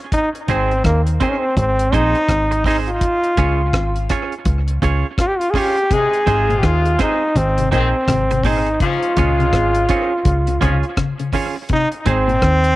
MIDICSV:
0, 0, Header, 1, 8, 480
1, 0, Start_track
1, 0, Key_signature, -4, "major"
1, 0, Tempo, 723764
1, 79, Time_signature, 4, 2, 24, 8
1, 8460, End_track
2, 0, Start_track
2, 0, Title_t, "Clean electric guitar"
2, 0, Program_c, 0, 27
2, 325, Note_on_c, 0, 60, 74
2, 329, Note_on_c, 0, 63, 80
2, 331, Note_on_c, 0, 68, 83
2, 338, Note_on_c, 0, 72, 86
2, 474, Note_off_c, 0, 60, 0
2, 476, Note_off_c, 0, 63, 0
2, 477, Note_off_c, 0, 68, 0
2, 481, Note_off_c, 0, 72, 0
2, 798, Note_on_c, 0, 60, 66
2, 804, Note_on_c, 0, 63, 69
2, 807, Note_on_c, 0, 68, 81
2, 811, Note_on_c, 0, 72, 79
2, 951, Note_off_c, 0, 60, 0
2, 954, Note_off_c, 0, 63, 0
2, 956, Note_off_c, 0, 68, 0
2, 957, Note_off_c, 0, 72, 0
2, 1278, Note_on_c, 0, 60, 88
2, 1284, Note_on_c, 0, 63, 89
2, 1289, Note_on_c, 0, 68, 82
2, 1291, Note_on_c, 0, 72, 87
2, 1431, Note_off_c, 0, 60, 0
2, 1434, Note_off_c, 0, 63, 0
2, 1436, Note_off_c, 0, 68, 0
2, 1437, Note_off_c, 0, 72, 0
2, 1762, Note_on_c, 0, 60, 69
2, 1768, Note_on_c, 0, 63, 81
2, 1774, Note_on_c, 0, 68, 74
2, 1775, Note_on_c, 0, 72, 82
2, 1912, Note_off_c, 0, 60, 0
2, 1916, Note_off_c, 0, 63, 0
2, 1919, Note_off_c, 0, 68, 0
2, 1919, Note_off_c, 0, 72, 0
2, 2239, Note_on_c, 0, 61, 73
2, 2244, Note_on_c, 0, 65, 75
2, 2245, Note_on_c, 0, 68, 91
2, 2252, Note_on_c, 0, 73, 82
2, 2391, Note_off_c, 0, 61, 0
2, 2394, Note_off_c, 0, 65, 0
2, 2394, Note_off_c, 0, 68, 0
2, 2398, Note_off_c, 0, 73, 0
2, 2720, Note_on_c, 0, 61, 68
2, 2725, Note_on_c, 0, 65, 71
2, 2729, Note_on_c, 0, 68, 76
2, 2731, Note_on_c, 0, 73, 80
2, 2871, Note_off_c, 0, 61, 0
2, 2874, Note_off_c, 0, 65, 0
2, 2876, Note_off_c, 0, 68, 0
2, 2877, Note_off_c, 0, 73, 0
2, 3199, Note_on_c, 0, 61, 86
2, 3202, Note_on_c, 0, 65, 83
2, 3208, Note_on_c, 0, 68, 79
2, 3211, Note_on_c, 0, 73, 92
2, 3351, Note_off_c, 0, 61, 0
2, 3352, Note_off_c, 0, 65, 0
2, 3355, Note_off_c, 0, 68, 0
2, 3357, Note_off_c, 0, 73, 0
2, 3681, Note_on_c, 0, 61, 72
2, 3686, Note_on_c, 0, 65, 77
2, 3693, Note_on_c, 0, 68, 85
2, 3697, Note_on_c, 0, 73, 75
2, 3816, Note_off_c, 0, 73, 0
2, 3822, Note_off_c, 0, 68, 0
2, 3824, Note_off_c, 0, 65, 0
2, 3832, Note_off_c, 0, 61, 0
2, 4153, Note_on_c, 0, 60, 76
2, 4158, Note_on_c, 0, 63, 83
2, 4163, Note_on_c, 0, 68, 78
2, 4168, Note_on_c, 0, 72, 82
2, 4308, Note_off_c, 0, 60, 0
2, 4311, Note_off_c, 0, 63, 0
2, 4313, Note_off_c, 0, 68, 0
2, 4315, Note_off_c, 0, 72, 0
2, 4635, Note_on_c, 0, 60, 85
2, 4641, Note_on_c, 0, 63, 89
2, 4645, Note_on_c, 0, 68, 93
2, 4645, Note_on_c, 0, 72, 85
2, 4789, Note_off_c, 0, 60, 0
2, 4792, Note_off_c, 0, 63, 0
2, 4794, Note_off_c, 0, 68, 0
2, 4794, Note_off_c, 0, 72, 0
2, 5118, Note_on_c, 0, 60, 90
2, 5123, Note_on_c, 0, 63, 96
2, 5128, Note_on_c, 0, 68, 93
2, 5133, Note_on_c, 0, 72, 90
2, 5270, Note_off_c, 0, 60, 0
2, 5273, Note_off_c, 0, 63, 0
2, 5275, Note_off_c, 0, 68, 0
2, 5278, Note_off_c, 0, 72, 0
2, 5603, Note_on_c, 0, 60, 75
2, 5608, Note_on_c, 0, 63, 77
2, 5611, Note_on_c, 0, 68, 80
2, 5616, Note_on_c, 0, 72, 71
2, 5753, Note_off_c, 0, 60, 0
2, 5756, Note_off_c, 0, 63, 0
2, 5757, Note_off_c, 0, 68, 0
2, 5759, Note_off_c, 0, 72, 0
2, 6082, Note_on_c, 0, 61, 83
2, 6089, Note_on_c, 0, 65, 85
2, 6093, Note_on_c, 0, 73, 88
2, 6094, Note_on_c, 0, 68, 84
2, 6233, Note_off_c, 0, 61, 0
2, 6236, Note_off_c, 0, 65, 0
2, 6238, Note_off_c, 0, 73, 0
2, 6239, Note_off_c, 0, 68, 0
2, 6559, Note_on_c, 0, 61, 86
2, 6564, Note_on_c, 0, 65, 74
2, 6567, Note_on_c, 0, 68, 82
2, 6571, Note_on_c, 0, 73, 84
2, 6712, Note_off_c, 0, 61, 0
2, 6714, Note_off_c, 0, 65, 0
2, 6715, Note_off_c, 0, 68, 0
2, 6717, Note_off_c, 0, 73, 0
2, 7036, Note_on_c, 0, 61, 79
2, 7039, Note_on_c, 0, 65, 95
2, 7045, Note_on_c, 0, 68, 88
2, 7047, Note_on_c, 0, 73, 95
2, 7190, Note_off_c, 0, 61, 0
2, 7192, Note_off_c, 0, 65, 0
2, 7194, Note_off_c, 0, 68, 0
2, 7195, Note_off_c, 0, 73, 0
2, 7517, Note_on_c, 0, 61, 64
2, 7522, Note_on_c, 0, 65, 65
2, 7524, Note_on_c, 0, 68, 79
2, 7532, Note_on_c, 0, 73, 75
2, 7658, Note_off_c, 0, 73, 0
2, 7662, Note_off_c, 0, 68, 0
2, 7669, Note_off_c, 0, 65, 0
2, 7671, Note_off_c, 0, 61, 0
2, 7997, Note_on_c, 0, 60, 74
2, 8002, Note_on_c, 0, 63, 72
2, 8004, Note_on_c, 0, 68, 74
2, 8010, Note_on_c, 0, 72, 80
2, 8151, Note_off_c, 0, 60, 0
2, 8154, Note_off_c, 0, 63, 0
2, 8155, Note_off_c, 0, 68, 0
2, 8157, Note_off_c, 0, 72, 0
2, 8460, End_track
3, 0, Start_track
3, 0, Title_t, "Trombone"
3, 0, Program_c, 1, 57
3, 90, Note_on_c, 1, 63, 90
3, 195, Note_off_c, 1, 63, 0
3, 325, Note_on_c, 1, 60, 86
3, 545, Note_off_c, 1, 60, 0
3, 568, Note_on_c, 1, 58, 72
3, 674, Note_off_c, 1, 58, 0
3, 804, Note_on_c, 1, 60, 85
3, 856, Note_on_c, 1, 61, 68
3, 866, Note_off_c, 1, 60, 0
3, 925, Note_on_c, 1, 60, 87
3, 935, Note_off_c, 1, 61, 0
3, 1045, Note_off_c, 1, 60, 0
3, 1052, Note_on_c, 1, 60, 90
3, 1285, Note_on_c, 1, 63, 107
3, 1295, Note_off_c, 1, 60, 0
3, 1762, Note_off_c, 1, 63, 0
3, 1769, Note_on_c, 1, 63, 99
3, 1833, Note_off_c, 1, 63, 0
3, 1915, Note_on_c, 1, 65, 94
3, 2603, Note_off_c, 1, 65, 0
3, 3454, Note_on_c, 1, 65, 99
3, 3502, Note_on_c, 1, 67, 87
3, 3512, Note_off_c, 1, 65, 0
3, 3573, Note_on_c, 1, 65, 93
3, 3582, Note_off_c, 1, 67, 0
3, 3650, Note_on_c, 1, 68, 76
3, 3660, Note_off_c, 1, 65, 0
3, 3699, Note_on_c, 1, 67, 90
3, 3709, Note_off_c, 1, 68, 0
3, 3931, Note_on_c, 1, 68, 106
3, 3941, Note_off_c, 1, 67, 0
3, 4368, Note_on_c, 1, 67, 71
3, 4378, Note_off_c, 1, 68, 0
3, 4416, Note_on_c, 1, 65, 91
3, 4426, Note_off_c, 1, 67, 0
3, 4647, Note_off_c, 1, 65, 0
3, 4651, Note_on_c, 1, 63, 86
3, 4890, Note_on_c, 1, 60, 92
3, 4900, Note_off_c, 1, 63, 0
3, 5120, Note_off_c, 1, 60, 0
3, 5124, Note_on_c, 1, 60, 82
3, 5612, Note_on_c, 1, 63, 86
3, 5622, Note_off_c, 1, 60, 0
3, 5845, Note_off_c, 1, 63, 0
3, 5853, Note_on_c, 1, 65, 88
3, 7260, Note_off_c, 1, 65, 0
3, 7778, Note_on_c, 1, 63, 101
3, 7882, Note_off_c, 1, 63, 0
3, 8018, Note_on_c, 1, 60, 117
3, 8460, Note_off_c, 1, 60, 0
3, 8460, End_track
4, 0, Start_track
4, 0, Title_t, "Horn section"
4, 0, Program_c, 2, 61
4, 3920, Note_on_c, 2, 63, 100
4, 3922, Note_on_c, 2, 48, 89
4, 3924, Note_on_c, 2, 56, 94
4, 4111, Note_off_c, 2, 63, 0
4, 4112, Note_off_c, 2, 48, 0
4, 4114, Note_off_c, 2, 56, 0
4, 4160, Note_on_c, 2, 48, 72
4, 4161, Note_on_c, 2, 65, 91
4, 4164, Note_on_c, 2, 56, 76
4, 4612, Note_off_c, 2, 48, 0
4, 4613, Note_off_c, 2, 65, 0
4, 4614, Note_off_c, 2, 56, 0
4, 4640, Note_on_c, 2, 63, 78
4, 4641, Note_on_c, 2, 48, 66
4, 4641, Note_on_c, 2, 56, 60
4, 4756, Note_off_c, 2, 63, 0
4, 4757, Note_off_c, 2, 48, 0
4, 4757, Note_off_c, 2, 56, 0
4, 5125, Note_on_c, 2, 60, 88
4, 5126, Note_on_c, 2, 51, 74
4, 5128, Note_on_c, 2, 44, 78
4, 5211, Note_off_c, 2, 51, 0
4, 5211, Note_off_c, 2, 60, 0
4, 5213, Note_off_c, 2, 44, 0
4, 5835, Note_on_c, 2, 44, 99
4, 5836, Note_on_c, 2, 61, 117
4, 5838, Note_on_c, 2, 53, 101
4, 6029, Note_off_c, 2, 44, 0
4, 6029, Note_off_c, 2, 61, 0
4, 6030, Note_off_c, 2, 53, 0
4, 6073, Note_on_c, 2, 49, 88
4, 6073, Note_on_c, 2, 56, 85
4, 6074, Note_on_c, 2, 65, 86
4, 6530, Note_off_c, 2, 49, 0
4, 6530, Note_off_c, 2, 56, 0
4, 6530, Note_off_c, 2, 65, 0
4, 6552, Note_on_c, 2, 60, 70
4, 6554, Note_on_c, 2, 51, 70
4, 6556, Note_on_c, 2, 63, 82
4, 6672, Note_off_c, 2, 60, 0
4, 6674, Note_off_c, 2, 51, 0
4, 6675, Note_off_c, 2, 63, 0
4, 7027, Note_on_c, 2, 44, 65
4, 7029, Note_on_c, 2, 53, 69
4, 7029, Note_on_c, 2, 61, 75
4, 7119, Note_off_c, 2, 44, 0
4, 7120, Note_off_c, 2, 53, 0
4, 7120, Note_off_c, 2, 61, 0
4, 8460, End_track
5, 0, Start_track
5, 0, Title_t, "Clean electric guitar"
5, 0, Program_c, 3, 27
5, 3918, Note_on_c, 3, 48, 81
5, 4018, Note_off_c, 3, 48, 0
5, 4157, Note_on_c, 3, 44, 85
5, 4257, Note_off_c, 3, 44, 0
5, 4306, Note_on_c, 3, 46, 73
5, 4369, Note_off_c, 3, 46, 0
5, 5028, Note_on_c, 3, 48, 69
5, 5091, Note_off_c, 3, 48, 0
5, 5123, Note_on_c, 3, 46, 67
5, 5221, Note_off_c, 3, 46, 0
5, 5366, Note_on_c, 3, 48, 72
5, 5463, Note_off_c, 3, 48, 0
5, 5511, Note_on_c, 3, 48, 68
5, 5572, Note_off_c, 3, 48, 0
5, 5603, Note_on_c, 3, 46, 83
5, 5701, Note_off_c, 3, 46, 0
5, 5847, Note_on_c, 3, 49, 74
5, 5944, Note_off_c, 3, 49, 0
5, 6091, Note_on_c, 3, 46, 76
5, 6187, Note_off_c, 3, 46, 0
5, 6230, Note_on_c, 3, 48, 80
5, 6292, Note_off_c, 3, 48, 0
5, 6949, Note_on_c, 3, 49, 72
5, 7012, Note_off_c, 3, 49, 0
5, 7042, Note_on_c, 3, 48, 69
5, 7141, Note_off_c, 3, 48, 0
5, 7278, Note_on_c, 3, 49, 81
5, 7378, Note_off_c, 3, 49, 0
5, 7427, Note_on_c, 3, 49, 68
5, 7490, Note_off_c, 3, 49, 0
5, 7519, Note_on_c, 3, 51, 75
5, 7619, Note_off_c, 3, 51, 0
5, 7760, Note_on_c, 3, 48, 83
5, 7860, Note_off_c, 3, 48, 0
5, 7995, Note_on_c, 3, 44, 76
5, 8097, Note_off_c, 3, 44, 0
5, 8143, Note_on_c, 3, 46, 79
5, 8208, Note_off_c, 3, 46, 0
5, 8460, End_track
6, 0, Start_track
6, 0, Title_t, "Fingered electric bass"
6, 0, Program_c, 4, 33
6, 324, Note_on_c, 4, 32, 85
6, 540, Note_off_c, 4, 32, 0
6, 561, Note_on_c, 4, 39, 85
6, 779, Note_off_c, 4, 39, 0
6, 1040, Note_on_c, 4, 32, 104
6, 1258, Note_off_c, 4, 32, 0
6, 1282, Note_on_c, 4, 34, 88
6, 1414, Note_off_c, 4, 34, 0
6, 1518, Note_on_c, 4, 32, 85
6, 1972, Note_off_c, 4, 32, 0
6, 2239, Note_on_c, 4, 37, 92
6, 2458, Note_off_c, 4, 37, 0
6, 2478, Note_on_c, 4, 32, 84
6, 2697, Note_off_c, 4, 32, 0
6, 2956, Note_on_c, 4, 37, 101
6, 3176, Note_off_c, 4, 37, 0
6, 3199, Note_on_c, 4, 37, 96
6, 3332, Note_off_c, 4, 37, 0
6, 4159, Note_on_c, 4, 32, 92
6, 4378, Note_off_c, 4, 32, 0
6, 4398, Note_on_c, 4, 39, 86
6, 4617, Note_off_c, 4, 39, 0
6, 4881, Note_on_c, 4, 32, 104
6, 5099, Note_off_c, 4, 32, 0
6, 5121, Note_on_c, 4, 34, 83
6, 5254, Note_off_c, 4, 34, 0
6, 5357, Note_on_c, 4, 32, 82
6, 5811, Note_off_c, 4, 32, 0
6, 6082, Note_on_c, 4, 37, 91
6, 6300, Note_off_c, 4, 37, 0
6, 6319, Note_on_c, 4, 32, 93
6, 6538, Note_off_c, 4, 32, 0
6, 6799, Note_on_c, 4, 37, 94
6, 7018, Note_off_c, 4, 37, 0
6, 7042, Note_on_c, 4, 37, 107
6, 7175, Note_off_c, 4, 37, 0
6, 8000, Note_on_c, 4, 32, 90
6, 8219, Note_off_c, 4, 32, 0
6, 8238, Note_on_c, 4, 39, 85
6, 8458, Note_off_c, 4, 39, 0
6, 8460, End_track
7, 0, Start_track
7, 0, Title_t, "Muted clean electric guitar strokes"
7, 2, Note_on_c, 9, 29, 36
7, 68, Note_off_c, 9, 29, 0
7, 1666, Note_on_c, 9, 29, 39
7, 1732, Note_off_c, 9, 29, 0
7, 3824, Note_on_c, 9, 29, 40
7, 3890, Note_off_c, 9, 29, 0
7, 5512, Note_on_c, 9, 29, 40
7, 5578, Note_off_c, 9, 29, 0
7, 7666, Note_on_c, 9, 29, 44
7, 7732, Note_off_c, 9, 29, 0
7, 8460, End_track
8, 0, Start_track
8, 0, Title_t, "Drums"
8, 81, Note_on_c, 9, 36, 101
8, 82, Note_on_c, 9, 42, 97
8, 147, Note_off_c, 9, 36, 0
8, 148, Note_off_c, 9, 42, 0
8, 233, Note_on_c, 9, 42, 47
8, 300, Note_off_c, 9, 42, 0
8, 321, Note_on_c, 9, 42, 84
8, 323, Note_on_c, 9, 36, 96
8, 387, Note_off_c, 9, 42, 0
8, 389, Note_off_c, 9, 36, 0
8, 474, Note_on_c, 9, 42, 33
8, 541, Note_off_c, 9, 42, 0
8, 560, Note_on_c, 9, 36, 102
8, 562, Note_on_c, 9, 42, 76
8, 563, Note_on_c, 9, 37, 89
8, 626, Note_off_c, 9, 36, 0
8, 628, Note_off_c, 9, 42, 0
8, 629, Note_off_c, 9, 37, 0
8, 707, Note_on_c, 9, 42, 55
8, 774, Note_off_c, 9, 42, 0
8, 799, Note_on_c, 9, 42, 75
8, 803, Note_on_c, 9, 36, 86
8, 865, Note_off_c, 9, 42, 0
8, 869, Note_off_c, 9, 36, 0
8, 1040, Note_on_c, 9, 36, 99
8, 1041, Note_on_c, 9, 42, 81
8, 1106, Note_off_c, 9, 36, 0
8, 1107, Note_off_c, 9, 42, 0
8, 1189, Note_on_c, 9, 42, 59
8, 1256, Note_off_c, 9, 42, 0
8, 1282, Note_on_c, 9, 36, 86
8, 1286, Note_on_c, 9, 42, 67
8, 1348, Note_off_c, 9, 36, 0
8, 1352, Note_off_c, 9, 42, 0
8, 1426, Note_on_c, 9, 42, 29
8, 1492, Note_off_c, 9, 42, 0
8, 1516, Note_on_c, 9, 36, 110
8, 1519, Note_on_c, 9, 42, 88
8, 1520, Note_on_c, 9, 37, 94
8, 1582, Note_off_c, 9, 36, 0
8, 1585, Note_off_c, 9, 42, 0
8, 1586, Note_off_c, 9, 37, 0
8, 1669, Note_on_c, 9, 42, 49
8, 1735, Note_off_c, 9, 42, 0
8, 1753, Note_on_c, 9, 36, 76
8, 1762, Note_on_c, 9, 46, 59
8, 1819, Note_off_c, 9, 36, 0
8, 1828, Note_off_c, 9, 46, 0
8, 1908, Note_on_c, 9, 42, 32
8, 1975, Note_off_c, 9, 42, 0
8, 1997, Note_on_c, 9, 36, 96
8, 1997, Note_on_c, 9, 42, 90
8, 2063, Note_off_c, 9, 42, 0
8, 2064, Note_off_c, 9, 36, 0
8, 2146, Note_on_c, 9, 42, 47
8, 2212, Note_off_c, 9, 42, 0
8, 2237, Note_on_c, 9, 42, 85
8, 2238, Note_on_c, 9, 36, 90
8, 2304, Note_off_c, 9, 42, 0
8, 2305, Note_off_c, 9, 36, 0
8, 2476, Note_on_c, 9, 36, 103
8, 2479, Note_on_c, 9, 42, 71
8, 2480, Note_on_c, 9, 37, 109
8, 2542, Note_off_c, 9, 36, 0
8, 2545, Note_off_c, 9, 42, 0
8, 2546, Note_off_c, 9, 37, 0
8, 2624, Note_on_c, 9, 42, 50
8, 2690, Note_off_c, 9, 42, 0
8, 2715, Note_on_c, 9, 42, 79
8, 2718, Note_on_c, 9, 37, 66
8, 2720, Note_on_c, 9, 36, 84
8, 2782, Note_off_c, 9, 42, 0
8, 2784, Note_off_c, 9, 37, 0
8, 2786, Note_off_c, 9, 36, 0
8, 2866, Note_on_c, 9, 42, 33
8, 2933, Note_off_c, 9, 42, 0
8, 2953, Note_on_c, 9, 42, 91
8, 2955, Note_on_c, 9, 36, 107
8, 3020, Note_off_c, 9, 42, 0
8, 3022, Note_off_c, 9, 36, 0
8, 3102, Note_on_c, 9, 42, 61
8, 3169, Note_off_c, 9, 42, 0
8, 3197, Note_on_c, 9, 36, 89
8, 3202, Note_on_c, 9, 42, 67
8, 3264, Note_off_c, 9, 36, 0
8, 3268, Note_off_c, 9, 42, 0
8, 3435, Note_on_c, 9, 36, 106
8, 3439, Note_on_c, 9, 42, 88
8, 3440, Note_on_c, 9, 37, 89
8, 3501, Note_off_c, 9, 36, 0
8, 3505, Note_off_c, 9, 42, 0
8, 3507, Note_off_c, 9, 37, 0
8, 3588, Note_on_c, 9, 42, 50
8, 3654, Note_off_c, 9, 42, 0
8, 3672, Note_on_c, 9, 36, 76
8, 3680, Note_on_c, 9, 46, 76
8, 3738, Note_off_c, 9, 36, 0
8, 3747, Note_off_c, 9, 46, 0
8, 3829, Note_on_c, 9, 42, 30
8, 3895, Note_off_c, 9, 42, 0
8, 3917, Note_on_c, 9, 36, 110
8, 3917, Note_on_c, 9, 42, 96
8, 3983, Note_off_c, 9, 36, 0
8, 3983, Note_off_c, 9, 42, 0
8, 4067, Note_on_c, 9, 42, 44
8, 4133, Note_off_c, 9, 42, 0
8, 4158, Note_on_c, 9, 36, 88
8, 4158, Note_on_c, 9, 42, 75
8, 4224, Note_off_c, 9, 42, 0
8, 4225, Note_off_c, 9, 36, 0
8, 4312, Note_on_c, 9, 42, 33
8, 4378, Note_off_c, 9, 42, 0
8, 4396, Note_on_c, 9, 36, 114
8, 4398, Note_on_c, 9, 42, 76
8, 4399, Note_on_c, 9, 37, 93
8, 4463, Note_off_c, 9, 36, 0
8, 4464, Note_off_c, 9, 42, 0
8, 4465, Note_off_c, 9, 37, 0
8, 4545, Note_on_c, 9, 42, 56
8, 4612, Note_off_c, 9, 42, 0
8, 4635, Note_on_c, 9, 42, 80
8, 4637, Note_on_c, 9, 37, 60
8, 4641, Note_on_c, 9, 36, 84
8, 4701, Note_off_c, 9, 42, 0
8, 4704, Note_off_c, 9, 37, 0
8, 4707, Note_off_c, 9, 36, 0
8, 4878, Note_on_c, 9, 36, 98
8, 4880, Note_on_c, 9, 42, 88
8, 4944, Note_off_c, 9, 36, 0
8, 4946, Note_off_c, 9, 42, 0
8, 5025, Note_on_c, 9, 42, 59
8, 5091, Note_off_c, 9, 42, 0
8, 5120, Note_on_c, 9, 36, 86
8, 5123, Note_on_c, 9, 42, 76
8, 5186, Note_off_c, 9, 36, 0
8, 5189, Note_off_c, 9, 42, 0
8, 5357, Note_on_c, 9, 36, 96
8, 5360, Note_on_c, 9, 42, 85
8, 5361, Note_on_c, 9, 37, 95
8, 5423, Note_off_c, 9, 36, 0
8, 5426, Note_off_c, 9, 42, 0
8, 5428, Note_off_c, 9, 37, 0
8, 5510, Note_on_c, 9, 42, 50
8, 5576, Note_off_c, 9, 42, 0
8, 5594, Note_on_c, 9, 36, 76
8, 5600, Note_on_c, 9, 46, 61
8, 5660, Note_off_c, 9, 36, 0
8, 5666, Note_off_c, 9, 46, 0
8, 5746, Note_on_c, 9, 42, 34
8, 5812, Note_off_c, 9, 42, 0
8, 5838, Note_on_c, 9, 36, 107
8, 5838, Note_on_c, 9, 42, 88
8, 5904, Note_off_c, 9, 36, 0
8, 5904, Note_off_c, 9, 42, 0
8, 5985, Note_on_c, 9, 42, 44
8, 6052, Note_off_c, 9, 42, 0
8, 6079, Note_on_c, 9, 42, 87
8, 6081, Note_on_c, 9, 36, 97
8, 6145, Note_off_c, 9, 42, 0
8, 6147, Note_off_c, 9, 36, 0
8, 6234, Note_on_c, 9, 42, 34
8, 6301, Note_off_c, 9, 42, 0
8, 6319, Note_on_c, 9, 36, 104
8, 6322, Note_on_c, 9, 42, 72
8, 6323, Note_on_c, 9, 37, 87
8, 6385, Note_off_c, 9, 36, 0
8, 6388, Note_off_c, 9, 42, 0
8, 6389, Note_off_c, 9, 37, 0
8, 6464, Note_on_c, 9, 42, 60
8, 6530, Note_off_c, 9, 42, 0
8, 6557, Note_on_c, 9, 42, 77
8, 6564, Note_on_c, 9, 36, 87
8, 6623, Note_off_c, 9, 42, 0
8, 6630, Note_off_c, 9, 36, 0
8, 6798, Note_on_c, 9, 42, 94
8, 6799, Note_on_c, 9, 36, 99
8, 6864, Note_off_c, 9, 42, 0
8, 6866, Note_off_c, 9, 36, 0
8, 6944, Note_on_c, 9, 42, 61
8, 7010, Note_off_c, 9, 42, 0
8, 7041, Note_on_c, 9, 36, 84
8, 7042, Note_on_c, 9, 42, 64
8, 7107, Note_off_c, 9, 36, 0
8, 7109, Note_off_c, 9, 42, 0
8, 7183, Note_on_c, 9, 42, 28
8, 7250, Note_off_c, 9, 42, 0
8, 7276, Note_on_c, 9, 36, 95
8, 7276, Note_on_c, 9, 42, 87
8, 7278, Note_on_c, 9, 37, 104
8, 7342, Note_off_c, 9, 36, 0
8, 7343, Note_off_c, 9, 42, 0
8, 7344, Note_off_c, 9, 37, 0
8, 7425, Note_on_c, 9, 42, 50
8, 7491, Note_off_c, 9, 42, 0
8, 7512, Note_on_c, 9, 36, 78
8, 7514, Note_on_c, 9, 46, 67
8, 7578, Note_off_c, 9, 36, 0
8, 7580, Note_off_c, 9, 46, 0
8, 7752, Note_on_c, 9, 42, 91
8, 7757, Note_on_c, 9, 36, 96
8, 7818, Note_off_c, 9, 42, 0
8, 7823, Note_off_c, 9, 36, 0
8, 7903, Note_on_c, 9, 42, 43
8, 7969, Note_off_c, 9, 42, 0
8, 7996, Note_on_c, 9, 42, 83
8, 8000, Note_on_c, 9, 36, 95
8, 8062, Note_off_c, 9, 42, 0
8, 8066, Note_off_c, 9, 36, 0
8, 8152, Note_on_c, 9, 42, 32
8, 8218, Note_off_c, 9, 42, 0
8, 8237, Note_on_c, 9, 36, 107
8, 8237, Note_on_c, 9, 42, 73
8, 8238, Note_on_c, 9, 37, 95
8, 8303, Note_off_c, 9, 36, 0
8, 8304, Note_off_c, 9, 37, 0
8, 8304, Note_off_c, 9, 42, 0
8, 8382, Note_on_c, 9, 42, 53
8, 8449, Note_off_c, 9, 42, 0
8, 8460, End_track
0, 0, End_of_file